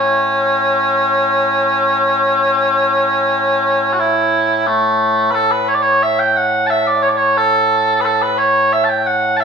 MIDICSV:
0, 0, Header, 1, 2, 480
1, 0, Start_track
1, 0, Tempo, 674157
1, 926, Time_signature, 2, 2, 24, 8
1, 6722, End_track
2, 0, Start_track
2, 0, Title_t, "Bagpipes"
2, 0, Program_c, 0, 109
2, 0, Note_on_c, 0, 45, 89
2, 0, Note_on_c, 0, 61, 101
2, 2796, Note_off_c, 0, 61, 0
2, 2796, Note_on_c, 0, 66, 72
2, 2846, Note_off_c, 0, 66, 0
2, 2846, Note_on_c, 0, 64, 96
2, 3326, Note_off_c, 0, 64, 0
2, 3326, Note_on_c, 0, 57, 77
2, 3779, Note_off_c, 0, 57, 0
2, 3779, Note_on_c, 0, 71, 93
2, 3804, Note_off_c, 0, 71, 0
2, 3804, Note_on_c, 0, 69, 93
2, 3924, Note_off_c, 0, 69, 0
2, 3924, Note_on_c, 0, 71, 89
2, 4048, Note_off_c, 0, 71, 0
2, 4048, Note_on_c, 0, 73, 104
2, 4090, Note_off_c, 0, 73, 0
2, 4090, Note_on_c, 0, 74, 92
2, 4146, Note_off_c, 0, 74, 0
2, 4146, Note_on_c, 0, 73, 102
2, 4291, Note_off_c, 0, 73, 0
2, 4291, Note_on_c, 0, 76, 106
2, 4409, Note_off_c, 0, 76, 0
2, 4409, Note_on_c, 0, 79, 94
2, 4531, Note_off_c, 0, 79, 0
2, 4531, Note_on_c, 0, 78, 101
2, 4746, Note_off_c, 0, 78, 0
2, 4746, Note_on_c, 0, 81, 105
2, 4770, Note_off_c, 0, 81, 0
2, 4770, Note_on_c, 0, 76, 105
2, 4890, Note_off_c, 0, 76, 0
2, 4890, Note_on_c, 0, 74, 96
2, 5002, Note_off_c, 0, 74, 0
2, 5002, Note_on_c, 0, 73, 98
2, 5049, Note_off_c, 0, 73, 0
2, 5049, Note_on_c, 0, 74, 83
2, 5107, Note_off_c, 0, 74, 0
2, 5107, Note_on_c, 0, 73, 95
2, 5250, Note_off_c, 0, 73, 0
2, 5250, Note_on_c, 0, 69, 94
2, 5700, Note_off_c, 0, 69, 0
2, 5700, Note_on_c, 0, 71, 96
2, 5731, Note_off_c, 0, 71, 0
2, 5731, Note_on_c, 0, 69, 96
2, 5852, Note_off_c, 0, 69, 0
2, 5852, Note_on_c, 0, 71, 92
2, 5969, Note_off_c, 0, 71, 0
2, 5969, Note_on_c, 0, 73, 101
2, 6213, Note_off_c, 0, 73, 0
2, 6213, Note_on_c, 0, 76, 108
2, 6295, Note_off_c, 0, 76, 0
2, 6295, Note_on_c, 0, 81, 84
2, 6330, Note_off_c, 0, 81, 0
2, 6330, Note_on_c, 0, 79, 88
2, 6453, Note_off_c, 0, 79, 0
2, 6453, Note_on_c, 0, 78, 99
2, 6668, Note_off_c, 0, 78, 0
2, 6668, Note_on_c, 0, 81, 106
2, 6694, Note_off_c, 0, 81, 0
2, 6694, Note_on_c, 0, 76, 106
2, 6722, Note_off_c, 0, 45, 0
2, 6722, Note_off_c, 0, 76, 0
2, 6722, End_track
0, 0, End_of_file